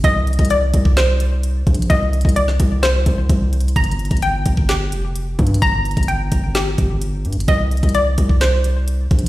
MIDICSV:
0, 0, Header, 1, 4, 480
1, 0, Start_track
1, 0, Key_signature, -2, "minor"
1, 0, Tempo, 465116
1, 40, Time_signature, 4, 2, 24, 8
1, 9585, End_track
2, 0, Start_track
2, 0, Title_t, "Synth pluck"
2, 0, Program_c, 0, 84
2, 45, Note_on_c, 0, 75, 113
2, 522, Note_on_c, 0, 74, 97
2, 1001, Note_on_c, 0, 72, 96
2, 1946, Note_off_c, 0, 75, 0
2, 1959, Note_on_c, 0, 75, 97
2, 2425, Note_off_c, 0, 74, 0
2, 2437, Note_on_c, 0, 74, 100
2, 2906, Note_off_c, 0, 72, 0
2, 2919, Note_on_c, 0, 72, 103
2, 3879, Note_off_c, 0, 74, 0
2, 3880, Note_off_c, 0, 72, 0
2, 3880, Note_off_c, 0, 75, 0
2, 3882, Note_on_c, 0, 82, 104
2, 4361, Note_on_c, 0, 79, 101
2, 4842, Note_on_c, 0, 67, 92
2, 5787, Note_off_c, 0, 82, 0
2, 5799, Note_on_c, 0, 82, 120
2, 6265, Note_off_c, 0, 79, 0
2, 6277, Note_on_c, 0, 79, 96
2, 6746, Note_off_c, 0, 67, 0
2, 6759, Note_on_c, 0, 67, 92
2, 7719, Note_off_c, 0, 79, 0
2, 7720, Note_off_c, 0, 67, 0
2, 7720, Note_off_c, 0, 82, 0
2, 7724, Note_on_c, 0, 75, 109
2, 8201, Note_on_c, 0, 74, 97
2, 8681, Note_on_c, 0, 72, 97
2, 9585, Note_off_c, 0, 72, 0
2, 9585, Note_off_c, 0, 74, 0
2, 9585, Note_off_c, 0, 75, 0
2, 9585, End_track
3, 0, Start_track
3, 0, Title_t, "808-style bass"
3, 0, Program_c, 1, 38
3, 41, Note_on_c, 1, 36, 113
3, 386, Note_off_c, 1, 36, 0
3, 401, Note_on_c, 1, 36, 108
3, 746, Note_off_c, 1, 36, 0
3, 761, Note_on_c, 1, 36, 107
3, 1682, Note_off_c, 1, 36, 0
3, 1721, Note_on_c, 1, 34, 103
3, 1951, Note_off_c, 1, 34, 0
3, 1961, Note_on_c, 1, 36, 114
3, 2306, Note_off_c, 1, 36, 0
3, 2321, Note_on_c, 1, 36, 102
3, 2666, Note_off_c, 1, 36, 0
3, 2681, Note_on_c, 1, 36, 108
3, 3142, Note_off_c, 1, 36, 0
3, 3161, Note_on_c, 1, 36, 102
3, 3391, Note_off_c, 1, 36, 0
3, 3401, Note_on_c, 1, 36, 104
3, 3861, Note_off_c, 1, 36, 0
3, 3880, Note_on_c, 1, 31, 109
3, 4226, Note_off_c, 1, 31, 0
3, 4240, Note_on_c, 1, 31, 102
3, 4586, Note_off_c, 1, 31, 0
3, 4601, Note_on_c, 1, 31, 108
3, 5081, Note_on_c, 1, 29, 97
3, 5096, Note_off_c, 1, 31, 0
3, 5537, Note_off_c, 1, 29, 0
3, 5561, Note_on_c, 1, 43, 105
3, 5791, Note_off_c, 1, 43, 0
3, 5800, Note_on_c, 1, 31, 109
3, 6146, Note_off_c, 1, 31, 0
3, 6160, Note_on_c, 1, 31, 101
3, 6506, Note_off_c, 1, 31, 0
3, 6521, Note_on_c, 1, 31, 105
3, 6981, Note_off_c, 1, 31, 0
3, 7000, Note_on_c, 1, 31, 104
3, 7480, Note_on_c, 1, 43, 97
3, 7496, Note_off_c, 1, 31, 0
3, 7600, Note_on_c, 1, 31, 104
3, 7616, Note_off_c, 1, 43, 0
3, 7715, Note_off_c, 1, 31, 0
3, 7720, Note_on_c, 1, 36, 112
3, 8066, Note_off_c, 1, 36, 0
3, 8081, Note_on_c, 1, 36, 100
3, 8426, Note_off_c, 1, 36, 0
3, 8441, Note_on_c, 1, 36, 105
3, 9362, Note_off_c, 1, 36, 0
3, 9401, Note_on_c, 1, 34, 101
3, 9585, Note_off_c, 1, 34, 0
3, 9585, End_track
4, 0, Start_track
4, 0, Title_t, "Drums"
4, 41, Note_on_c, 9, 36, 121
4, 41, Note_on_c, 9, 42, 78
4, 144, Note_off_c, 9, 36, 0
4, 144, Note_off_c, 9, 42, 0
4, 281, Note_on_c, 9, 42, 42
4, 341, Note_off_c, 9, 42, 0
4, 341, Note_on_c, 9, 42, 48
4, 401, Note_off_c, 9, 42, 0
4, 401, Note_on_c, 9, 36, 98
4, 401, Note_on_c, 9, 42, 58
4, 461, Note_off_c, 9, 42, 0
4, 461, Note_on_c, 9, 42, 69
4, 504, Note_off_c, 9, 36, 0
4, 519, Note_off_c, 9, 42, 0
4, 519, Note_on_c, 9, 42, 73
4, 622, Note_off_c, 9, 42, 0
4, 759, Note_on_c, 9, 42, 90
4, 762, Note_on_c, 9, 36, 91
4, 863, Note_off_c, 9, 42, 0
4, 865, Note_off_c, 9, 36, 0
4, 880, Note_on_c, 9, 36, 100
4, 983, Note_off_c, 9, 36, 0
4, 999, Note_on_c, 9, 42, 88
4, 1000, Note_on_c, 9, 38, 114
4, 1011, Note_on_c, 9, 39, 94
4, 1102, Note_off_c, 9, 42, 0
4, 1103, Note_off_c, 9, 38, 0
4, 1115, Note_off_c, 9, 39, 0
4, 1240, Note_on_c, 9, 42, 78
4, 1343, Note_off_c, 9, 42, 0
4, 1480, Note_on_c, 9, 42, 72
4, 1583, Note_off_c, 9, 42, 0
4, 1721, Note_on_c, 9, 36, 96
4, 1721, Note_on_c, 9, 42, 46
4, 1801, Note_off_c, 9, 42, 0
4, 1801, Note_on_c, 9, 42, 58
4, 1824, Note_off_c, 9, 36, 0
4, 1881, Note_off_c, 9, 42, 0
4, 1881, Note_on_c, 9, 42, 73
4, 1961, Note_off_c, 9, 42, 0
4, 1961, Note_on_c, 9, 36, 120
4, 1961, Note_on_c, 9, 42, 76
4, 2064, Note_off_c, 9, 36, 0
4, 2064, Note_off_c, 9, 42, 0
4, 2201, Note_on_c, 9, 42, 39
4, 2201, Note_on_c, 9, 46, 73
4, 2281, Note_off_c, 9, 42, 0
4, 2281, Note_on_c, 9, 42, 55
4, 2304, Note_off_c, 9, 46, 0
4, 2321, Note_on_c, 9, 36, 98
4, 2361, Note_off_c, 9, 42, 0
4, 2361, Note_on_c, 9, 42, 68
4, 2424, Note_off_c, 9, 36, 0
4, 2439, Note_off_c, 9, 42, 0
4, 2439, Note_on_c, 9, 42, 76
4, 2542, Note_off_c, 9, 42, 0
4, 2561, Note_on_c, 9, 38, 64
4, 2664, Note_off_c, 9, 38, 0
4, 2680, Note_on_c, 9, 42, 86
4, 2681, Note_on_c, 9, 36, 92
4, 2783, Note_off_c, 9, 42, 0
4, 2785, Note_off_c, 9, 36, 0
4, 2920, Note_on_c, 9, 42, 86
4, 2921, Note_on_c, 9, 38, 116
4, 2932, Note_on_c, 9, 39, 93
4, 3023, Note_off_c, 9, 42, 0
4, 3024, Note_off_c, 9, 38, 0
4, 3036, Note_off_c, 9, 39, 0
4, 3159, Note_on_c, 9, 42, 79
4, 3161, Note_on_c, 9, 36, 96
4, 3263, Note_off_c, 9, 42, 0
4, 3264, Note_off_c, 9, 36, 0
4, 3400, Note_on_c, 9, 36, 109
4, 3400, Note_on_c, 9, 42, 74
4, 3504, Note_off_c, 9, 36, 0
4, 3504, Note_off_c, 9, 42, 0
4, 3641, Note_on_c, 9, 42, 62
4, 3721, Note_off_c, 9, 42, 0
4, 3721, Note_on_c, 9, 42, 60
4, 3800, Note_off_c, 9, 42, 0
4, 3800, Note_on_c, 9, 42, 58
4, 3880, Note_on_c, 9, 36, 113
4, 3881, Note_off_c, 9, 42, 0
4, 3881, Note_on_c, 9, 42, 76
4, 3961, Note_off_c, 9, 42, 0
4, 3961, Note_on_c, 9, 42, 62
4, 3984, Note_off_c, 9, 36, 0
4, 4040, Note_off_c, 9, 42, 0
4, 4040, Note_on_c, 9, 42, 60
4, 4121, Note_off_c, 9, 42, 0
4, 4121, Note_on_c, 9, 42, 39
4, 4181, Note_off_c, 9, 42, 0
4, 4181, Note_on_c, 9, 42, 49
4, 4240, Note_off_c, 9, 42, 0
4, 4240, Note_on_c, 9, 42, 55
4, 4241, Note_on_c, 9, 36, 92
4, 4300, Note_off_c, 9, 42, 0
4, 4300, Note_on_c, 9, 42, 64
4, 4344, Note_off_c, 9, 36, 0
4, 4358, Note_off_c, 9, 42, 0
4, 4358, Note_on_c, 9, 42, 73
4, 4462, Note_off_c, 9, 42, 0
4, 4599, Note_on_c, 9, 42, 87
4, 4601, Note_on_c, 9, 36, 90
4, 4702, Note_off_c, 9, 42, 0
4, 4704, Note_off_c, 9, 36, 0
4, 4719, Note_on_c, 9, 36, 95
4, 4823, Note_off_c, 9, 36, 0
4, 4839, Note_on_c, 9, 38, 114
4, 4839, Note_on_c, 9, 42, 87
4, 4851, Note_on_c, 9, 39, 95
4, 4942, Note_off_c, 9, 42, 0
4, 4943, Note_off_c, 9, 38, 0
4, 4954, Note_off_c, 9, 39, 0
4, 5080, Note_on_c, 9, 42, 78
4, 5183, Note_off_c, 9, 42, 0
4, 5320, Note_on_c, 9, 42, 72
4, 5424, Note_off_c, 9, 42, 0
4, 5561, Note_on_c, 9, 36, 96
4, 5561, Note_on_c, 9, 42, 43
4, 5641, Note_off_c, 9, 42, 0
4, 5641, Note_on_c, 9, 42, 59
4, 5664, Note_off_c, 9, 36, 0
4, 5721, Note_off_c, 9, 42, 0
4, 5721, Note_on_c, 9, 42, 73
4, 5800, Note_on_c, 9, 36, 116
4, 5801, Note_off_c, 9, 42, 0
4, 5801, Note_on_c, 9, 42, 78
4, 5904, Note_off_c, 9, 36, 0
4, 5904, Note_off_c, 9, 42, 0
4, 6041, Note_on_c, 9, 42, 41
4, 6101, Note_off_c, 9, 42, 0
4, 6101, Note_on_c, 9, 42, 49
4, 6160, Note_off_c, 9, 42, 0
4, 6160, Note_on_c, 9, 42, 57
4, 6161, Note_on_c, 9, 36, 96
4, 6220, Note_off_c, 9, 42, 0
4, 6220, Note_on_c, 9, 42, 65
4, 6264, Note_off_c, 9, 36, 0
4, 6279, Note_off_c, 9, 42, 0
4, 6279, Note_on_c, 9, 42, 74
4, 6382, Note_off_c, 9, 42, 0
4, 6519, Note_on_c, 9, 42, 86
4, 6521, Note_on_c, 9, 36, 92
4, 6622, Note_off_c, 9, 42, 0
4, 6624, Note_off_c, 9, 36, 0
4, 6758, Note_on_c, 9, 42, 84
4, 6759, Note_on_c, 9, 38, 113
4, 6771, Note_on_c, 9, 39, 92
4, 6862, Note_off_c, 9, 38, 0
4, 6862, Note_off_c, 9, 42, 0
4, 6874, Note_off_c, 9, 39, 0
4, 6999, Note_on_c, 9, 42, 73
4, 7001, Note_on_c, 9, 36, 93
4, 7102, Note_off_c, 9, 42, 0
4, 7104, Note_off_c, 9, 36, 0
4, 7240, Note_on_c, 9, 42, 75
4, 7343, Note_off_c, 9, 42, 0
4, 7480, Note_on_c, 9, 42, 43
4, 7560, Note_off_c, 9, 42, 0
4, 7560, Note_on_c, 9, 42, 58
4, 7640, Note_off_c, 9, 42, 0
4, 7640, Note_on_c, 9, 42, 75
4, 7720, Note_on_c, 9, 36, 115
4, 7721, Note_off_c, 9, 42, 0
4, 7721, Note_on_c, 9, 42, 76
4, 7823, Note_off_c, 9, 36, 0
4, 7824, Note_off_c, 9, 42, 0
4, 7961, Note_on_c, 9, 42, 40
4, 8021, Note_off_c, 9, 42, 0
4, 8021, Note_on_c, 9, 42, 49
4, 8081, Note_off_c, 9, 42, 0
4, 8081, Note_on_c, 9, 36, 96
4, 8081, Note_on_c, 9, 42, 54
4, 8141, Note_off_c, 9, 42, 0
4, 8141, Note_on_c, 9, 42, 66
4, 8184, Note_off_c, 9, 36, 0
4, 8200, Note_off_c, 9, 42, 0
4, 8200, Note_on_c, 9, 42, 71
4, 8303, Note_off_c, 9, 42, 0
4, 8440, Note_on_c, 9, 42, 87
4, 8441, Note_on_c, 9, 36, 89
4, 8543, Note_off_c, 9, 42, 0
4, 8544, Note_off_c, 9, 36, 0
4, 8560, Note_on_c, 9, 36, 93
4, 8663, Note_off_c, 9, 36, 0
4, 8679, Note_on_c, 9, 42, 84
4, 8680, Note_on_c, 9, 38, 119
4, 8692, Note_on_c, 9, 39, 88
4, 8782, Note_off_c, 9, 42, 0
4, 8783, Note_off_c, 9, 38, 0
4, 8795, Note_off_c, 9, 39, 0
4, 8920, Note_on_c, 9, 42, 75
4, 9023, Note_off_c, 9, 42, 0
4, 9161, Note_on_c, 9, 42, 73
4, 9264, Note_off_c, 9, 42, 0
4, 9400, Note_on_c, 9, 42, 44
4, 9401, Note_on_c, 9, 36, 95
4, 9481, Note_off_c, 9, 42, 0
4, 9481, Note_on_c, 9, 42, 60
4, 9504, Note_off_c, 9, 36, 0
4, 9584, Note_off_c, 9, 42, 0
4, 9585, End_track
0, 0, End_of_file